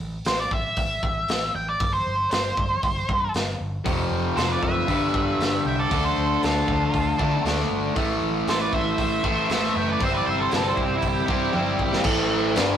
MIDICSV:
0, 0, Header, 1, 6, 480
1, 0, Start_track
1, 0, Key_signature, 0, "minor"
1, 0, Tempo, 512821
1, 1688, Time_signature, 4, 2, 24, 8
1, 11953, End_track
2, 0, Start_track
2, 0, Title_t, "Lead electric guitar"
2, 0, Program_c, 0, 29
2, 251, Note_on_c, 0, 72, 95
2, 364, Note_off_c, 0, 72, 0
2, 370, Note_on_c, 0, 74, 80
2, 492, Note_off_c, 0, 74, 0
2, 492, Note_on_c, 0, 76, 87
2, 1423, Note_off_c, 0, 76, 0
2, 1455, Note_on_c, 0, 79, 80
2, 1568, Note_off_c, 0, 79, 0
2, 1577, Note_on_c, 0, 74, 68
2, 1803, Note_on_c, 0, 72, 76
2, 1806, Note_off_c, 0, 74, 0
2, 2154, Note_off_c, 0, 72, 0
2, 2165, Note_on_c, 0, 72, 95
2, 3100, Note_off_c, 0, 72, 0
2, 4091, Note_on_c, 0, 72, 87
2, 4208, Note_off_c, 0, 72, 0
2, 4231, Note_on_c, 0, 74, 80
2, 4338, Note_off_c, 0, 74, 0
2, 4343, Note_on_c, 0, 76, 97
2, 5269, Note_off_c, 0, 76, 0
2, 5303, Note_on_c, 0, 79, 75
2, 5414, Note_off_c, 0, 79, 0
2, 5420, Note_on_c, 0, 74, 73
2, 5649, Note_off_c, 0, 74, 0
2, 5655, Note_on_c, 0, 72, 74
2, 6002, Note_off_c, 0, 72, 0
2, 6023, Note_on_c, 0, 69, 78
2, 6948, Note_off_c, 0, 69, 0
2, 7948, Note_on_c, 0, 72, 91
2, 8056, Note_off_c, 0, 72, 0
2, 8063, Note_on_c, 0, 74, 84
2, 8177, Note_off_c, 0, 74, 0
2, 8177, Note_on_c, 0, 76, 88
2, 9104, Note_off_c, 0, 76, 0
2, 9156, Note_on_c, 0, 79, 80
2, 9259, Note_off_c, 0, 79, 0
2, 9291, Note_on_c, 0, 74, 84
2, 9386, Note_off_c, 0, 74, 0
2, 9413, Note_on_c, 0, 76, 82
2, 9507, Note_off_c, 0, 76, 0
2, 9519, Note_on_c, 0, 74, 76
2, 9620, Note_off_c, 0, 74, 0
2, 9645, Note_on_c, 0, 76, 85
2, 9743, Note_off_c, 0, 76, 0
2, 9754, Note_on_c, 0, 72, 79
2, 9857, Note_off_c, 0, 72, 0
2, 9880, Note_on_c, 0, 69, 76
2, 9980, Note_off_c, 0, 69, 0
2, 10002, Note_on_c, 0, 72, 91
2, 10101, Note_off_c, 0, 72, 0
2, 10132, Note_on_c, 0, 67, 86
2, 10248, Note_off_c, 0, 67, 0
2, 10248, Note_on_c, 0, 64, 82
2, 10344, Note_off_c, 0, 64, 0
2, 10371, Note_on_c, 0, 67, 96
2, 10581, Note_off_c, 0, 67, 0
2, 10601, Note_on_c, 0, 67, 88
2, 11278, Note_off_c, 0, 67, 0
2, 11953, End_track
3, 0, Start_track
3, 0, Title_t, "Lead electric guitar"
3, 0, Program_c, 1, 29
3, 4090, Note_on_c, 1, 69, 70
3, 4201, Note_off_c, 1, 69, 0
3, 4205, Note_on_c, 1, 71, 57
3, 4320, Note_off_c, 1, 71, 0
3, 4336, Note_on_c, 1, 71, 83
3, 5256, Note_off_c, 1, 71, 0
3, 5318, Note_on_c, 1, 76, 64
3, 5417, Note_off_c, 1, 76, 0
3, 5421, Note_on_c, 1, 69, 61
3, 5640, Note_off_c, 1, 69, 0
3, 5667, Note_on_c, 1, 69, 59
3, 5994, Note_off_c, 1, 69, 0
3, 6044, Note_on_c, 1, 65, 67
3, 6950, Note_off_c, 1, 65, 0
3, 7951, Note_on_c, 1, 69, 78
3, 8044, Note_off_c, 1, 69, 0
3, 8048, Note_on_c, 1, 71, 62
3, 8177, Note_off_c, 1, 71, 0
3, 8177, Note_on_c, 1, 72, 82
3, 9123, Note_on_c, 1, 76, 66
3, 9132, Note_off_c, 1, 72, 0
3, 9237, Note_off_c, 1, 76, 0
3, 9250, Note_on_c, 1, 71, 67
3, 9361, Note_off_c, 1, 71, 0
3, 9388, Note_on_c, 1, 72, 74
3, 9490, Note_off_c, 1, 72, 0
3, 9494, Note_on_c, 1, 71, 64
3, 9603, Note_off_c, 1, 71, 0
3, 9610, Note_on_c, 1, 72, 76
3, 9720, Note_off_c, 1, 72, 0
3, 9736, Note_on_c, 1, 69, 72
3, 9833, Note_on_c, 1, 64, 63
3, 9843, Note_off_c, 1, 69, 0
3, 9947, Note_on_c, 1, 69, 67
3, 9951, Note_off_c, 1, 64, 0
3, 10063, Note_on_c, 1, 64, 74
3, 10067, Note_off_c, 1, 69, 0
3, 10157, Note_off_c, 1, 64, 0
3, 10157, Note_on_c, 1, 60, 59
3, 10275, Note_off_c, 1, 60, 0
3, 10278, Note_on_c, 1, 64, 76
3, 10523, Note_off_c, 1, 64, 0
3, 10536, Note_on_c, 1, 64, 76
3, 11229, Note_off_c, 1, 64, 0
3, 11953, End_track
4, 0, Start_track
4, 0, Title_t, "Overdriven electric guitar"
4, 0, Program_c, 2, 29
4, 3598, Note_on_c, 2, 41, 74
4, 3615, Note_on_c, 2, 48, 84
4, 3630, Note_on_c, 2, 53, 84
4, 4551, Note_off_c, 2, 41, 0
4, 4559, Note_off_c, 2, 48, 0
4, 4562, Note_on_c, 2, 43, 78
4, 4567, Note_off_c, 2, 53, 0
4, 4581, Note_on_c, 2, 50, 82
4, 4592, Note_on_c, 2, 55, 81
4, 5509, Note_off_c, 2, 50, 0
4, 5512, Note_off_c, 2, 43, 0
4, 5521, Note_on_c, 2, 50, 75
4, 5527, Note_off_c, 2, 55, 0
4, 5540, Note_on_c, 2, 57, 83
4, 5550, Note_on_c, 2, 62, 88
4, 6711, Note_off_c, 2, 50, 0
4, 6714, Note_off_c, 2, 62, 0
4, 6721, Note_off_c, 2, 57, 0
4, 6726, Note_on_c, 2, 62, 82
4, 6743, Note_on_c, 2, 57, 69
4, 6751, Note_on_c, 2, 50, 62
4, 6954, Note_off_c, 2, 50, 0
4, 6954, Note_off_c, 2, 62, 0
4, 6962, Note_off_c, 2, 57, 0
4, 6965, Note_on_c, 2, 50, 72
4, 6978, Note_on_c, 2, 57, 73
4, 6990, Note_on_c, 2, 62, 83
4, 7433, Note_off_c, 2, 50, 0
4, 7439, Note_on_c, 2, 45, 81
4, 7440, Note_off_c, 2, 57, 0
4, 7446, Note_off_c, 2, 62, 0
4, 7454, Note_on_c, 2, 52, 83
4, 7469, Note_on_c, 2, 57, 88
4, 8629, Note_off_c, 2, 45, 0
4, 8636, Note_off_c, 2, 57, 0
4, 8647, Note_on_c, 2, 57, 80
4, 8657, Note_off_c, 2, 52, 0
4, 8660, Note_on_c, 2, 52, 67
4, 8677, Note_on_c, 2, 45, 69
4, 8873, Note_off_c, 2, 57, 0
4, 8879, Note_off_c, 2, 45, 0
4, 8890, Note_on_c, 2, 45, 74
4, 8902, Note_off_c, 2, 52, 0
4, 8905, Note_on_c, 2, 52, 77
4, 8917, Note_on_c, 2, 57, 78
4, 9354, Note_off_c, 2, 45, 0
4, 9362, Note_on_c, 2, 48, 73
4, 9367, Note_off_c, 2, 57, 0
4, 9370, Note_off_c, 2, 52, 0
4, 9374, Note_on_c, 2, 55, 78
4, 9385, Note_on_c, 2, 60, 90
4, 10547, Note_off_c, 2, 48, 0
4, 10547, Note_off_c, 2, 60, 0
4, 10553, Note_off_c, 2, 55, 0
4, 10558, Note_on_c, 2, 60, 77
4, 10570, Note_on_c, 2, 55, 65
4, 10586, Note_on_c, 2, 48, 66
4, 10781, Note_off_c, 2, 48, 0
4, 10786, Note_off_c, 2, 60, 0
4, 10792, Note_off_c, 2, 55, 0
4, 10793, Note_on_c, 2, 48, 72
4, 10808, Note_on_c, 2, 55, 73
4, 10819, Note_on_c, 2, 60, 75
4, 11261, Note_off_c, 2, 48, 0
4, 11269, Note_off_c, 2, 55, 0
4, 11273, Note_on_c, 2, 45, 89
4, 11274, Note_off_c, 2, 60, 0
4, 11280, Note_on_c, 2, 52, 106
4, 11284, Note_on_c, 2, 57, 106
4, 11747, Note_off_c, 2, 45, 0
4, 11750, Note_off_c, 2, 52, 0
4, 11753, Note_off_c, 2, 57, 0
4, 11757, Note_on_c, 2, 43, 96
4, 11762, Note_on_c, 2, 50, 89
4, 11767, Note_on_c, 2, 55, 93
4, 11953, Note_off_c, 2, 43, 0
4, 11953, Note_off_c, 2, 50, 0
4, 11953, Note_off_c, 2, 55, 0
4, 11953, End_track
5, 0, Start_track
5, 0, Title_t, "Picked electric bass"
5, 0, Program_c, 3, 34
5, 1, Note_on_c, 3, 33, 81
5, 163, Note_off_c, 3, 33, 0
5, 240, Note_on_c, 3, 33, 81
5, 402, Note_off_c, 3, 33, 0
5, 479, Note_on_c, 3, 33, 72
5, 642, Note_off_c, 3, 33, 0
5, 725, Note_on_c, 3, 33, 80
5, 887, Note_off_c, 3, 33, 0
5, 969, Note_on_c, 3, 33, 78
5, 1129, Note_off_c, 3, 33, 0
5, 1207, Note_on_c, 3, 33, 80
5, 1368, Note_off_c, 3, 33, 0
5, 1448, Note_on_c, 3, 33, 83
5, 1609, Note_off_c, 3, 33, 0
5, 1685, Note_on_c, 3, 31, 83
5, 1848, Note_off_c, 3, 31, 0
5, 1934, Note_on_c, 3, 31, 83
5, 2093, Note_off_c, 3, 31, 0
5, 2174, Note_on_c, 3, 31, 80
5, 2334, Note_off_c, 3, 31, 0
5, 2407, Note_on_c, 3, 31, 75
5, 2569, Note_off_c, 3, 31, 0
5, 2652, Note_on_c, 3, 31, 80
5, 2813, Note_off_c, 3, 31, 0
5, 2891, Note_on_c, 3, 43, 82
5, 3052, Note_off_c, 3, 43, 0
5, 3131, Note_on_c, 3, 31, 77
5, 3292, Note_off_c, 3, 31, 0
5, 3374, Note_on_c, 3, 31, 81
5, 3534, Note_off_c, 3, 31, 0
5, 3607, Note_on_c, 3, 29, 76
5, 3770, Note_off_c, 3, 29, 0
5, 3843, Note_on_c, 3, 29, 77
5, 4007, Note_off_c, 3, 29, 0
5, 4087, Note_on_c, 3, 29, 74
5, 4250, Note_off_c, 3, 29, 0
5, 4333, Note_on_c, 3, 30, 77
5, 4493, Note_off_c, 3, 30, 0
5, 4570, Note_on_c, 3, 31, 74
5, 4732, Note_off_c, 3, 31, 0
5, 4807, Note_on_c, 3, 31, 79
5, 4970, Note_off_c, 3, 31, 0
5, 5046, Note_on_c, 3, 31, 73
5, 5209, Note_off_c, 3, 31, 0
5, 5288, Note_on_c, 3, 36, 81
5, 5450, Note_off_c, 3, 36, 0
5, 5533, Note_on_c, 3, 38, 85
5, 5694, Note_off_c, 3, 38, 0
5, 5773, Note_on_c, 3, 38, 77
5, 5934, Note_off_c, 3, 38, 0
5, 6021, Note_on_c, 3, 38, 78
5, 6179, Note_off_c, 3, 38, 0
5, 6255, Note_on_c, 3, 38, 80
5, 6415, Note_off_c, 3, 38, 0
5, 6492, Note_on_c, 3, 38, 80
5, 6652, Note_off_c, 3, 38, 0
5, 6730, Note_on_c, 3, 50, 81
5, 6891, Note_off_c, 3, 50, 0
5, 6963, Note_on_c, 3, 38, 76
5, 7126, Note_off_c, 3, 38, 0
5, 7208, Note_on_c, 3, 31, 83
5, 7370, Note_off_c, 3, 31, 0
5, 7457, Note_on_c, 3, 33, 83
5, 7615, Note_off_c, 3, 33, 0
5, 7687, Note_on_c, 3, 33, 84
5, 7849, Note_off_c, 3, 33, 0
5, 7933, Note_on_c, 3, 33, 74
5, 8093, Note_off_c, 3, 33, 0
5, 8172, Note_on_c, 3, 33, 80
5, 8332, Note_off_c, 3, 33, 0
5, 8412, Note_on_c, 3, 33, 80
5, 8572, Note_off_c, 3, 33, 0
5, 8648, Note_on_c, 3, 33, 85
5, 8809, Note_off_c, 3, 33, 0
5, 8889, Note_on_c, 3, 33, 81
5, 9050, Note_off_c, 3, 33, 0
5, 9131, Note_on_c, 3, 30, 84
5, 9291, Note_off_c, 3, 30, 0
5, 9361, Note_on_c, 3, 31, 78
5, 9524, Note_off_c, 3, 31, 0
5, 9619, Note_on_c, 3, 31, 89
5, 9776, Note_off_c, 3, 31, 0
5, 9854, Note_on_c, 3, 31, 82
5, 10012, Note_off_c, 3, 31, 0
5, 10087, Note_on_c, 3, 31, 75
5, 10247, Note_off_c, 3, 31, 0
5, 10321, Note_on_c, 3, 31, 83
5, 10483, Note_off_c, 3, 31, 0
5, 10562, Note_on_c, 3, 43, 81
5, 10723, Note_off_c, 3, 43, 0
5, 10815, Note_on_c, 3, 31, 81
5, 10971, Note_off_c, 3, 31, 0
5, 11038, Note_on_c, 3, 32, 82
5, 11200, Note_off_c, 3, 32, 0
5, 11277, Note_on_c, 3, 33, 93
5, 11723, Note_off_c, 3, 33, 0
5, 11770, Note_on_c, 3, 31, 86
5, 11953, Note_off_c, 3, 31, 0
5, 11953, End_track
6, 0, Start_track
6, 0, Title_t, "Drums"
6, 232, Note_on_c, 9, 46, 50
6, 248, Note_on_c, 9, 38, 102
6, 326, Note_off_c, 9, 46, 0
6, 342, Note_off_c, 9, 38, 0
6, 480, Note_on_c, 9, 36, 73
6, 574, Note_off_c, 9, 36, 0
6, 715, Note_on_c, 9, 46, 50
6, 721, Note_on_c, 9, 36, 76
6, 808, Note_off_c, 9, 46, 0
6, 815, Note_off_c, 9, 36, 0
6, 963, Note_on_c, 9, 36, 84
6, 1057, Note_off_c, 9, 36, 0
6, 1201, Note_on_c, 9, 46, 46
6, 1216, Note_on_c, 9, 38, 101
6, 1294, Note_off_c, 9, 46, 0
6, 1310, Note_off_c, 9, 38, 0
6, 1684, Note_on_c, 9, 46, 43
6, 1688, Note_on_c, 9, 36, 93
6, 1777, Note_off_c, 9, 46, 0
6, 1781, Note_off_c, 9, 36, 0
6, 2163, Note_on_c, 9, 46, 47
6, 2179, Note_on_c, 9, 38, 112
6, 2256, Note_off_c, 9, 46, 0
6, 2272, Note_off_c, 9, 38, 0
6, 2409, Note_on_c, 9, 36, 74
6, 2503, Note_off_c, 9, 36, 0
6, 2647, Note_on_c, 9, 46, 42
6, 2650, Note_on_c, 9, 36, 80
6, 2741, Note_off_c, 9, 46, 0
6, 2744, Note_off_c, 9, 36, 0
6, 2891, Note_on_c, 9, 36, 82
6, 2984, Note_off_c, 9, 36, 0
6, 3127, Note_on_c, 9, 46, 45
6, 3143, Note_on_c, 9, 38, 97
6, 3220, Note_off_c, 9, 46, 0
6, 3236, Note_off_c, 9, 38, 0
6, 3610, Note_on_c, 9, 46, 45
6, 3611, Note_on_c, 9, 36, 94
6, 3704, Note_off_c, 9, 36, 0
6, 3704, Note_off_c, 9, 46, 0
6, 4091, Note_on_c, 9, 46, 50
6, 4107, Note_on_c, 9, 38, 105
6, 4184, Note_off_c, 9, 46, 0
6, 4200, Note_off_c, 9, 38, 0
6, 4330, Note_on_c, 9, 36, 74
6, 4424, Note_off_c, 9, 36, 0
6, 4570, Note_on_c, 9, 36, 70
6, 4570, Note_on_c, 9, 46, 46
6, 4663, Note_off_c, 9, 46, 0
6, 4664, Note_off_c, 9, 36, 0
6, 4812, Note_on_c, 9, 36, 83
6, 4905, Note_off_c, 9, 36, 0
6, 5057, Note_on_c, 9, 46, 46
6, 5073, Note_on_c, 9, 38, 98
6, 5151, Note_off_c, 9, 46, 0
6, 5167, Note_off_c, 9, 38, 0
6, 5533, Note_on_c, 9, 36, 95
6, 5538, Note_on_c, 9, 46, 44
6, 5627, Note_off_c, 9, 36, 0
6, 5632, Note_off_c, 9, 46, 0
6, 6016, Note_on_c, 9, 46, 46
6, 6032, Note_on_c, 9, 38, 106
6, 6110, Note_off_c, 9, 46, 0
6, 6126, Note_off_c, 9, 38, 0
6, 6253, Note_on_c, 9, 36, 73
6, 6347, Note_off_c, 9, 36, 0
6, 6494, Note_on_c, 9, 36, 79
6, 6497, Note_on_c, 9, 46, 43
6, 6588, Note_off_c, 9, 36, 0
6, 6591, Note_off_c, 9, 46, 0
6, 6734, Note_on_c, 9, 36, 82
6, 6827, Note_off_c, 9, 36, 0
6, 6977, Note_on_c, 9, 46, 40
6, 6992, Note_on_c, 9, 38, 94
6, 7070, Note_off_c, 9, 46, 0
6, 7086, Note_off_c, 9, 38, 0
6, 7111, Note_on_c, 9, 38, 29
6, 7204, Note_off_c, 9, 38, 0
6, 7453, Note_on_c, 9, 36, 93
6, 7456, Note_on_c, 9, 46, 41
6, 7547, Note_off_c, 9, 36, 0
6, 7549, Note_off_c, 9, 46, 0
6, 7932, Note_on_c, 9, 46, 49
6, 7948, Note_on_c, 9, 38, 99
6, 8025, Note_off_c, 9, 46, 0
6, 8041, Note_off_c, 9, 38, 0
6, 8169, Note_on_c, 9, 36, 69
6, 8262, Note_off_c, 9, 36, 0
6, 8404, Note_on_c, 9, 46, 49
6, 8408, Note_on_c, 9, 36, 72
6, 8498, Note_off_c, 9, 46, 0
6, 8502, Note_off_c, 9, 36, 0
6, 8649, Note_on_c, 9, 36, 81
6, 8743, Note_off_c, 9, 36, 0
6, 8887, Note_on_c, 9, 46, 47
6, 8903, Note_on_c, 9, 38, 99
6, 8981, Note_off_c, 9, 46, 0
6, 8997, Note_off_c, 9, 38, 0
6, 9022, Note_on_c, 9, 38, 30
6, 9115, Note_off_c, 9, 38, 0
6, 9362, Note_on_c, 9, 46, 44
6, 9365, Note_on_c, 9, 36, 99
6, 9455, Note_off_c, 9, 46, 0
6, 9459, Note_off_c, 9, 36, 0
6, 9840, Note_on_c, 9, 46, 50
6, 9855, Note_on_c, 9, 38, 105
6, 9933, Note_off_c, 9, 46, 0
6, 9949, Note_off_c, 9, 38, 0
6, 10084, Note_on_c, 9, 36, 73
6, 10178, Note_off_c, 9, 36, 0
6, 10314, Note_on_c, 9, 46, 42
6, 10322, Note_on_c, 9, 36, 76
6, 10408, Note_off_c, 9, 46, 0
6, 10415, Note_off_c, 9, 36, 0
6, 10561, Note_on_c, 9, 36, 87
6, 10655, Note_off_c, 9, 36, 0
6, 10794, Note_on_c, 9, 48, 49
6, 10888, Note_off_c, 9, 48, 0
6, 11038, Note_on_c, 9, 36, 72
6, 11131, Note_off_c, 9, 36, 0
6, 11168, Note_on_c, 9, 38, 68
6, 11262, Note_off_c, 9, 38, 0
6, 11269, Note_on_c, 9, 49, 114
6, 11269, Note_on_c, 9, 57, 55
6, 11278, Note_on_c, 9, 36, 103
6, 11362, Note_off_c, 9, 49, 0
6, 11362, Note_off_c, 9, 57, 0
6, 11371, Note_off_c, 9, 36, 0
6, 11754, Note_on_c, 9, 57, 65
6, 11770, Note_on_c, 9, 38, 126
6, 11848, Note_off_c, 9, 57, 0
6, 11864, Note_off_c, 9, 38, 0
6, 11953, End_track
0, 0, End_of_file